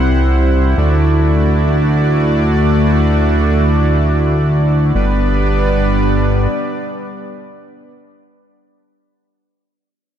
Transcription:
0.00 0.75 C2 medium
0.00 0.73 G3 medium
0.00 0.74 C4 medium
0.00 4.91 E4 medium
0.00 0.74 C5 medium
0.00 0.75 F#5 medium
0.77 4.92 D2 medium
0.77 4.91 A3 medium
0.77 4.91 D4 medium
0.77 4.91 F#4 medium
0.77 4.91 D5 medium
4.95 6.48 G1 medium
4.95 7.93 G3 medium
4.95 7.93 B3 medium
4.95 7.93 D4 medium
4.95 7.93 B4 medium
4.95 7.93 D5 medium

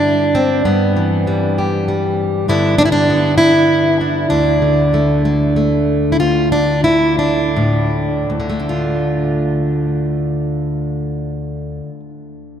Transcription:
0.00 0.65 G2 medium
0.00 0.65 D3 medium
0.00 0.66 D4 loud
0.35 0.65 C4 medium
0.65 2.45 G2 medium
0.65 1.95 B3 medium
0.97 2.45 E3 medium
1.27 1.87 G3 soft
1.58 2.45 G4 soft
1.88 2.49 G3 soft
2.48 4.27 G2 medium
2.48 2.77 D3 medium
2.48 3.09 B3 soft
2.48 2.78 D4 medium
2.48 2.78 E4 loud
2.78 4.61 D3 medium
2.78 2.85 D4 loud
2.85 2.92 E4 medium
2.92 3.37 D4 loud
3.10 4.27 B3 soft
3.38 4.29 E4 loud
4.01 4.30 D4 soft
4.30 6.19 D2 medium
4.30 6.12 D4 medium
4.62 6.86 D3 medium
4.94 5.24 A3 medium
5.25 5.55 A3 soft
5.56 6.17 A3 soft
6.12 6.19 E4 medium
6.20 8.29 D2 medium
6.20 6.52 F4 loud
6.52 6.84 D4 medium
6.84 8.38 D3 medium
6.84 7.18 E4 medium
7.19 8.28 D4 medium
7.56 8.30 A2 medium
8.30 11.80 D2 medium
8.40 11.90 D3 soft
8.50 12.00 A3 medium
8.60 12.10 D4 medium
8.69 11.83 F4 medium

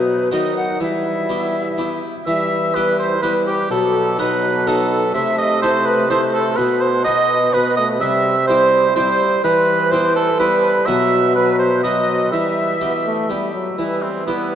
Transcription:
0.00 0.28 B2 soft
0.00 0.31 B2 medium
0.00 0.30 F#3 medium
0.00 0.31 D#4 medium
0.00 0.32 B4 medium
0.31 0.77 D#3 soft
0.31 0.82 D#3 medium
0.31 0.82 F#3 medium
0.31 0.67 B3 soft
0.31 0.82 D#4 medium
0.31 0.67 D#4 soft
0.31 0.67 F#4 soft
0.31 0.56 D#5 medium
0.57 0.80 F#5 medium
0.80 1.98 E3 soft
0.80 2.03 E3 medium
0.80 2.02 G3 medium
0.80 2.02 E4 medium
0.80 2.01 E5 medium
1.29 1.64 B3 soft
1.29 1.65 E4 soft
1.29 1.65 G4 soft
1.78 2.13 B3 soft
1.78 2.13 E4 soft
1.78 2.14 G4 soft
2.26 3.66 E3 medium
2.26 3.67 E3 medium
2.26 2.72 G3 medium
2.26 2.76 E5 loud
2.26 2.72 E5 medium
2.75 3.22 G3 medium
2.75 3.10 B3 medium
2.75 3.10 E4 medium
2.75 3.10 G4 medium
2.75 2.98 B4 medium
2.75 2.99 B4 loud
2.99 3.22 C5 medium
2.99 3.21 C5 medium
3.22 3.72 G3 medium
3.22 3.57 B3 medium
3.22 3.58 E4 medium
3.22 3.58 G4 medium
3.22 3.33 B4 loud
3.22 3.46 B4 medium
3.47 3.70 G4 medium
3.70 5.12 B2 medium
3.70 5.11 B2 medium
3.70 4.18 F#3 medium
3.70 4.18 A4 medium
3.70 4.19 A4 medium
4.18 5.16 F#3 medium
4.18 4.53 B3 medium
4.18 4.53 D#4 medium
4.18 4.54 F#4 medium
4.18 4.69 B4 loud
4.18 4.69 B4 medium
4.67 5.01 B3 medium
4.67 5.01 D#4 medium
4.67 5.02 F#4 medium
4.67 5.14 A4 medium
4.67 5.13 A4 loud
5.14 6.55 C3 medium
5.14 6.54 C3 medium
5.14 5.61 A3 medium
5.14 5.38 E5 loud
5.14 5.40 E5 medium
5.38 5.61 D#5 loud
5.38 5.62 D#5 loud
5.61 6.08 A3 medium
5.61 5.97 A3 medium
5.61 5.97 E4 medium
5.61 5.97 A4 medium
5.61 5.87 C5 loud
5.61 5.70 C5 medium
5.85 6.10 B4 loud
5.85 6.10 B4 medium
6.09 6.60 A3 medium
6.09 6.45 A3 medium
6.09 6.45 E4 medium
6.09 6.45 A4 medium
6.09 6.21 C5 loud
6.09 6.34 C5 medium
6.34 6.58 A4 loud
6.34 6.56 A4 medium
6.56 8.02 B2 medium
6.56 7.98 B2 medium
6.56 7.05 B3 medium
6.56 6.82 B4 loud
6.56 6.63 B4 medium
6.80 7.04 C5 loud
6.80 6.88 C5 medium
7.04 7.53 B3 medium
7.04 7.40 F#4 medium
7.04 7.41 B4 medium
7.04 7.52 D#5 loud
7.04 7.55 D#5 loud
7.53 7.80 B3 medium
7.53 7.88 F#4 medium
7.53 7.76 B4 medium
7.53 7.76 B4 loud
7.53 7.89 B4 medium
7.77 8.00 A3 medium
7.77 7.83 D#5 loud
7.77 7.88 D#5 loud
8.00 9.16 C3 medium
8.00 9.12 C3 medium
8.00 8.34 G3 medium
8.00 8.47 E5 loud
8.47 8.95 G3 medium
8.47 8.84 C4 medium
8.47 8.84 E4 medium
8.47 8.84 G4 medium
8.47 8.95 C5 loud
8.95 9.43 G3 medium
8.95 9.31 C4 medium
8.95 9.31 E4 medium
8.95 9.31 G4 medium
8.95 9.22 C5 loud
8.95 9.43 C5 loud
9.43 10.84 E3 medium
9.43 10.84 E3 loud
9.43 10.11 G3 medium
9.43 9.93 B4 loud
9.91 10.27 B3 medium
9.91 10.27 E4 medium
9.91 10.28 G4 medium
9.91 10.16 C5 medium
9.91 10.15 C5 loud
10.16 10.39 A4 loud
10.16 10.40 A4 loud
10.39 10.89 G3 medium
10.39 10.74 B3 medium
10.39 10.74 E4 medium
10.39 10.75 G4 medium
10.39 10.87 B4 medium
10.39 10.88 B4 loud
10.86 12.28 B2 medium
10.86 12.34 B2 medium
10.86 11.35 F#3 medium
10.86 11.32 B3 medium
10.86 11.32 F#4 medium
10.86 11.32 B4 medium
10.86 11.35 E5 loud
10.86 11.34 E5 loud
11.35 11.83 F#3 medium
11.35 11.58 B4 loud
11.35 11.59 B4 medium
11.59 11.83 C5 medium
11.83 12.33 F#3 medium
11.83 12.19 B3 medium
11.83 12.19 F#4 medium
11.83 12.20 B4 medium
11.83 12.31 D#5 loud
11.83 12.34 D#5 medium
12.32 13.54 E3 medium
12.32 13.51 E3 medium
12.32 12.76 G3 medium
12.32 13.52 E5 loud
12.32 13.55 E5 medium
12.81 13.16 B3 medium
12.81 12.93 B3 medium
12.81 13.16 G4 medium
12.81 13.17 B4 medium
13.05 13.32 A3 medium
13.30 13.54 G3 medium
13.30 13.65 B3 medium
13.30 13.65 G4 soft
13.30 13.66 B4 medium
13.54 13.78 F#3 medium
13.78 14.55 E3 soft
13.78 14.55 E3 medium
13.78 14.23 G3 medium
13.78 14.04 E4 medium
13.78 14.24 B4 medium
14.02 14.26 C4 medium
14.26 14.55 G3 medium
14.26 14.55 B3 medium
14.26 14.55 B3 soft
14.26 14.55 E4 soft
14.26 14.55 G4 soft
14.26 14.55 B4 medium

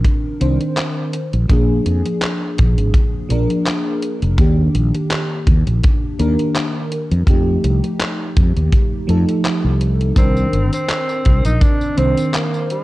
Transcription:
0.00 0.37 D#3 medium
0.00 0.37 C4 medium
0.00 0.38 D4 medium
0.00 0.38 A#4 medium
0.05 kick loud
0.05 closed hi-hat medium
0.40 0.57 C2 medium
0.40 1.11 D#3 medium
0.40 1.11 C4 medium
0.40 1.12 D4 medium
0.40 1.12 C5 loud
0.40 closed hi-hat medium
0.61 closed hi-hat medium
0.77 clap loud
0.77 closed hi-hat medium
1.13 closed hi-hat medium
1.33 1.46 A#1 loud
1.33 closed hi-hat medium
1.48 1.79 A#1 loud
1.48 3.26 F3 medium
1.48 3.26 A#3 medium
1.48 3.27 D4 medium
1.48 3.27 G#4 loud
1.48 kick loud
1.48 closed hi-hat medium
1.86 2.01 F2 medium
1.86 closed hi-hat medium
2.05 closed hi-hat medium
2.22 clap loud
2.22 closed hi-hat medium
2.58 2.74 A#1 medium
2.58 kick loud
2.58 closed hi-hat medium
2.78 2.91 G#1 medium
2.78 closed hi-hat medium
2.94 kick loud
2.94 closed hi-hat medium
3.29 3.46 A#1 medium
3.29 4.34 F3 loud
3.29 4.35 A#3 medium
3.29 4.35 D4 medium
3.29 4.36 A#4 loud
3.29 closed hi-hat medium
3.50 closed hi-hat medium
3.66 clap loud
3.66 closed hi-hat medium
4.03 closed hi-hat medium
4.22 4.35 F1 medium
4.22 closed hi-hat medium
4.37 4.68 D#2 medium
4.37 6.15 D#3 medium
4.37 6.15 A#3 medium
4.37 6.16 D4 medium
4.37 6.16 G4 medium
4.37 kick loud
4.37 closed hi-hat medium
4.75 4.90 A#1 medium
4.75 closed hi-hat medium
4.95 closed hi-hat medium
5.11 clap loud
5.11 closed hi-hat medium
5.47 5.63 D#2 medium
5.47 kick loud
5.47 closed hi-hat medium
5.67 5.80 A#1 medium
5.67 closed hi-hat medium
5.83 kick loud
5.83 closed hi-hat medium
6.19 6.35 D#2 medium
6.19 6.90 D#3 loud
6.19 6.90 A#3 medium
6.19 6.90 D4 medium
6.19 6.90 A#4 loud
6.19 closed hi-hat medium
6.39 closed hi-hat medium
6.56 clap loud
6.56 closed hi-hat medium
6.92 closed hi-hat medium
7.11 7.24 F2 loud
7.11 closed hi-hat medium
7.27 7.56 F2 loud
7.27 9.04 F3 medium
7.27 9.05 A3 medium
7.27 9.05 D#4 medium
7.27 9.06 G4 loud
7.27 kick loud
7.27 closed hi-hat medium
7.64 7.79 C2 medium
7.64 closed hi-hat medium
7.84 closed hi-hat soft
8.00 clap loud
8.00 closed hi-hat medium
8.36 8.52 F2 medium
8.36 kick loud
8.36 closed hi-hat medium
8.56 8.69 D#2 medium
8.56 closed hi-hat soft
8.72 kick loud
8.72 closed hi-hat medium
9.07 9.24 F2 medium
9.07 10.12 F3 medium
9.07 10.13 A3 medium
9.07 10.13 D#4 medium
9.07 10.14 A4 loud
9.07 closed hi-hat medium
9.29 closed hi-hat medium
9.45 clap loud
9.45 closed hi-hat medium
9.64 10.11 C2 medium
9.81 closed hi-hat medium
10.01 closed hi-hat medium
10.16 10.46 C2 loud
10.16 11.93 D#3 medium
10.16 11.94 C4 medium
10.16 10.69 C4 loud
10.16 11.94 D4 medium
10.16 11.95 A#4 medium
10.16 kick loud
10.16 closed hi-hat medium
10.16 tambourine soft
10.37 tambourine soft
10.53 10.69 G1 medium
10.53 closed hi-hat medium
10.73 11.42 C4 loud
10.73 closed hi-hat medium
10.73 tambourine medium
10.89 clap loud
10.89 closed hi-hat medium
10.89 tambourine soft
11.09 tambourine soft
11.25 11.41 C2 medium
11.25 kick loud
11.25 closed hi-hat medium
11.45 11.58 A#1 medium
11.45 11.64 D#4 loud
11.45 closed hi-hat soft
11.45 tambourine medium
11.62 12.00 D4 loud
11.62 kick loud
11.62 closed hi-hat medium
11.62 tambourine soft
11.81 tambourine soft
11.97 12.13 C2 medium
11.97 12.68 D#3 medium
11.97 12.68 C4 medium
11.97 12.36 C4 loud
11.97 12.68 D4 medium
11.97 12.69 C5 loud
11.97 closed hi-hat medium
12.18 closed hi-hat soft
12.18 tambourine medium
12.34 12.70 A#3 medium
12.34 clap loud
12.34 closed hi-hat medium
12.34 tambourine soft
12.54 tambourine soft
12.70 12.84 G#3 medium
12.70 closed hi-hat medium

